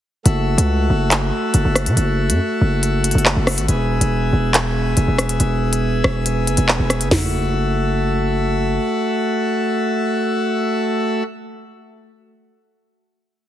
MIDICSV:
0, 0, Header, 1, 4, 480
1, 0, Start_track
1, 0, Key_signature, 3, "minor"
1, 0, Tempo, 428571
1, 287, Time_signature, 4, 2, 24, 8
1, 15098, End_track
2, 0, Start_track
2, 0, Title_t, "Pipe organ"
2, 0, Program_c, 0, 19
2, 284, Note_on_c, 0, 57, 68
2, 284, Note_on_c, 0, 66, 66
2, 284, Note_on_c, 0, 76, 77
2, 4087, Note_off_c, 0, 57, 0
2, 4087, Note_off_c, 0, 66, 0
2, 4128, Note_on_c, 0, 59, 69
2, 4128, Note_on_c, 0, 68, 66
2, 7921, Note_off_c, 0, 76, 0
2, 7929, Note_off_c, 0, 59, 0
2, 7929, Note_off_c, 0, 68, 0
2, 7968, Note_on_c, 0, 76, 76
2, 7969, Note_on_c, 0, 57, 71
2, 7969, Note_on_c, 0, 66, 64
2, 12572, Note_off_c, 0, 57, 0
2, 12572, Note_off_c, 0, 66, 0
2, 12572, Note_off_c, 0, 76, 0
2, 15098, End_track
3, 0, Start_track
3, 0, Title_t, "808-style bass"
3, 0, Program_c, 1, 38
3, 286, Note_on_c, 1, 30, 114
3, 632, Note_off_c, 1, 30, 0
3, 646, Note_on_c, 1, 37, 104
3, 992, Note_off_c, 1, 37, 0
3, 1007, Note_on_c, 1, 30, 103
3, 1467, Note_off_c, 1, 30, 0
3, 1726, Note_on_c, 1, 30, 108
3, 1841, Note_off_c, 1, 30, 0
3, 1846, Note_on_c, 1, 30, 109
3, 2086, Note_on_c, 1, 49, 99
3, 2103, Note_off_c, 1, 30, 0
3, 2200, Note_off_c, 1, 49, 0
3, 2206, Note_on_c, 1, 30, 111
3, 2566, Note_on_c, 1, 42, 99
3, 2583, Note_off_c, 1, 30, 0
3, 2680, Note_off_c, 1, 42, 0
3, 2926, Note_on_c, 1, 30, 105
3, 3502, Note_off_c, 1, 30, 0
3, 3526, Note_on_c, 1, 30, 103
3, 3757, Note_off_c, 1, 30, 0
3, 3767, Note_on_c, 1, 30, 111
3, 4007, Note_on_c, 1, 32, 98
3, 4023, Note_off_c, 1, 30, 0
3, 4121, Note_off_c, 1, 32, 0
3, 4128, Note_on_c, 1, 28, 115
3, 4473, Note_off_c, 1, 28, 0
3, 4488, Note_on_c, 1, 28, 102
3, 4833, Note_off_c, 1, 28, 0
3, 4848, Note_on_c, 1, 28, 107
3, 5538, Note_off_c, 1, 28, 0
3, 5567, Note_on_c, 1, 28, 107
3, 5682, Note_off_c, 1, 28, 0
3, 5689, Note_on_c, 1, 28, 104
3, 6033, Note_off_c, 1, 28, 0
3, 6048, Note_on_c, 1, 28, 116
3, 6738, Note_off_c, 1, 28, 0
3, 6768, Note_on_c, 1, 28, 111
3, 7248, Note_on_c, 1, 30, 105
3, 7265, Note_off_c, 1, 28, 0
3, 7361, Note_off_c, 1, 30, 0
3, 7368, Note_on_c, 1, 28, 105
3, 7598, Note_off_c, 1, 28, 0
3, 7608, Note_on_c, 1, 28, 109
3, 7848, Note_on_c, 1, 30, 96
3, 7864, Note_off_c, 1, 28, 0
3, 7961, Note_off_c, 1, 30, 0
3, 7967, Note_on_c, 1, 30, 112
3, 9842, Note_off_c, 1, 30, 0
3, 15098, End_track
4, 0, Start_track
4, 0, Title_t, "Drums"
4, 287, Note_on_c, 9, 42, 73
4, 399, Note_off_c, 9, 42, 0
4, 654, Note_on_c, 9, 42, 84
4, 766, Note_off_c, 9, 42, 0
4, 1246, Note_on_c, 9, 39, 125
4, 1248, Note_on_c, 9, 42, 75
4, 1358, Note_off_c, 9, 39, 0
4, 1360, Note_off_c, 9, 42, 0
4, 1723, Note_on_c, 9, 42, 66
4, 1835, Note_off_c, 9, 42, 0
4, 1966, Note_on_c, 9, 37, 87
4, 1971, Note_on_c, 9, 42, 92
4, 2078, Note_off_c, 9, 37, 0
4, 2083, Note_off_c, 9, 42, 0
4, 2087, Note_on_c, 9, 42, 88
4, 2199, Note_off_c, 9, 42, 0
4, 2206, Note_on_c, 9, 42, 73
4, 2318, Note_off_c, 9, 42, 0
4, 2573, Note_on_c, 9, 42, 86
4, 2685, Note_off_c, 9, 42, 0
4, 3168, Note_on_c, 9, 42, 75
4, 3280, Note_off_c, 9, 42, 0
4, 3407, Note_on_c, 9, 42, 84
4, 3486, Note_off_c, 9, 42, 0
4, 3486, Note_on_c, 9, 42, 66
4, 3566, Note_off_c, 9, 42, 0
4, 3566, Note_on_c, 9, 42, 47
4, 3647, Note_on_c, 9, 39, 106
4, 3678, Note_off_c, 9, 42, 0
4, 3759, Note_off_c, 9, 39, 0
4, 3887, Note_on_c, 9, 37, 91
4, 3892, Note_on_c, 9, 46, 66
4, 3999, Note_off_c, 9, 37, 0
4, 4004, Note_off_c, 9, 46, 0
4, 4008, Note_on_c, 9, 42, 97
4, 4120, Note_off_c, 9, 42, 0
4, 4127, Note_on_c, 9, 42, 71
4, 4239, Note_off_c, 9, 42, 0
4, 4494, Note_on_c, 9, 42, 82
4, 4606, Note_off_c, 9, 42, 0
4, 5087, Note_on_c, 9, 39, 122
4, 5088, Note_on_c, 9, 42, 76
4, 5199, Note_off_c, 9, 39, 0
4, 5200, Note_off_c, 9, 42, 0
4, 5564, Note_on_c, 9, 42, 65
4, 5676, Note_off_c, 9, 42, 0
4, 5807, Note_on_c, 9, 37, 90
4, 5812, Note_on_c, 9, 42, 91
4, 5919, Note_off_c, 9, 37, 0
4, 5924, Note_off_c, 9, 42, 0
4, 5928, Note_on_c, 9, 42, 85
4, 6040, Note_off_c, 9, 42, 0
4, 6047, Note_on_c, 9, 42, 74
4, 6159, Note_off_c, 9, 42, 0
4, 6414, Note_on_c, 9, 42, 82
4, 6526, Note_off_c, 9, 42, 0
4, 6768, Note_on_c, 9, 37, 95
4, 6880, Note_off_c, 9, 37, 0
4, 7009, Note_on_c, 9, 42, 75
4, 7121, Note_off_c, 9, 42, 0
4, 7251, Note_on_c, 9, 42, 79
4, 7361, Note_off_c, 9, 42, 0
4, 7361, Note_on_c, 9, 42, 93
4, 7473, Note_off_c, 9, 42, 0
4, 7488, Note_on_c, 9, 39, 104
4, 7600, Note_off_c, 9, 39, 0
4, 7728, Note_on_c, 9, 37, 87
4, 7733, Note_on_c, 9, 42, 93
4, 7840, Note_off_c, 9, 37, 0
4, 7845, Note_off_c, 9, 42, 0
4, 7848, Note_on_c, 9, 42, 90
4, 7960, Note_off_c, 9, 42, 0
4, 7967, Note_on_c, 9, 38, 105
4, 7967, Note_on_c, 9, 43, 103
4, 7967, Note_on_c, 9, 46, 89
4, 8079, Note_off_c, 9, 38, 0
4, 8079, Note_off_c, 9, 43, 0
4, 8079, Note_off_c, 9, 46, 0
4, 15098, End_track
0, 0, End_of_file